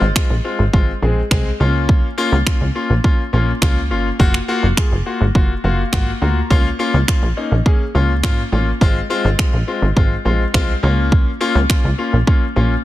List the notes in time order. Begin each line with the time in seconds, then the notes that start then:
0.01 G#1
0.16 G#3 C4 F4, finger snap, kick
0.30 A#1
0.44 G#3 C4 F4
0.59 G#1
0.73 G#1 G#3 C4 F4, kick
1.02 A#1 G#3 C4 G#4
1.31 C2 G#3 C4 G#4, finger snap, kick
1.60 C#2 A#3 C#4 F4
1.89 kick
2.18 A#3 C#4 F4
2.32 C#2
2.46 A#3 C#4 F4, finger snap, kick
2.61 C#2
2.75 A#3 C#4 F4
2.90 A#1
3.04 A#3 C#4 F4, kick
3.33 A#1 A#3 C#4 F4
3.62 C#2 A#3 C#4 F4, finger snap, kick
3.91 G1 A#3 C#4 F4
4.19 F#1 A#3 F4 F#4, kick
4.34 finger snap
4.48 A#3 F4 F#4
4.63 F#1
4.77 A#3 F4 G#4, finger snap, kick
4.92 F#1
5.06 A#3 F4 F#4
5.21 G#1
5.35 F#1 A#3 F4 F#4, kick
5.64 F#1 A#3 F4 F#4 F5
5.93 G#1 A#3 F4 F#4 F#5, finger snap, kick
6.21 D2 A#3 F4 F#4 A#5
6.50 C#2 A#3 C#4 F4, kick
6.79 A#3 C#4 F4
6.94 C#2
7.08 A#3 C#4 F4, finger snap, kick
7.23 A#1
7.37 A#3 C#4 D#4
7.51 A#1
7.66 A#3 C#4 G#4, kick
7.95 C#2 A#3 C#4 F4
8.23 G#2 A#3 C#4 F4, finger snap, kick
8.52 A1 A#3 C#4 F4
8.81 G#1 G#3 C4 F4, kick
9.10 G#3 C4 F4
9.25 G#1
9.39 G#3 C4 F4, finger snap, kick
9.53 A#1
9.67 G#3 C4 F4
9.82 G#1
9.96 G#1 G#3 C4 F4, kick
10.25 A#1 G#3 C4 F4
10.54 C2 G#3 C4 F4, finger snap, kick
10.83 C#2 A#3 C#4 F4
11.12 kick
11.41 A#3 C#4 F4
11.55 C#2
11.69 A#3 C#4 F4, finger snap, kick
11.84 C#2
11.98 A#3 C#4 F4
12.13 A#1
12.27 A#3 C#4 F4, kick
12.56 A#1 A#3 C#4 F4